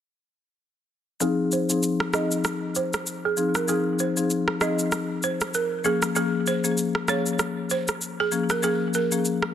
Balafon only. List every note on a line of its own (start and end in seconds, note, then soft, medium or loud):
1.22 1.35 G#4 medium
1.53 1.66 C5 medium
2.14 2.27 D#5 medium
2.76 2.89 C5 medium
3.25 3.34 G#4 medium
3.56 3.65 A#4 medium
3.69 3.82 G#4 medium
4.00 4.13 C5 medium
4.62 4.75 D#5 medium
5.24 5.37 C5 medium
5.55 5.68 A#4 medium
5.86 5.98 G#4 medium
6.16 6.29 G#4 medium
6.48 6.60 C5 medium
7.09 7.22 C#5 medium
7.71 7.84 C5 medium
8.20 8.29 G#4 medium
8.51 8.60 A#4 medium
8.64 8.77 G#4 loud
8.95 9.08 A#4 medium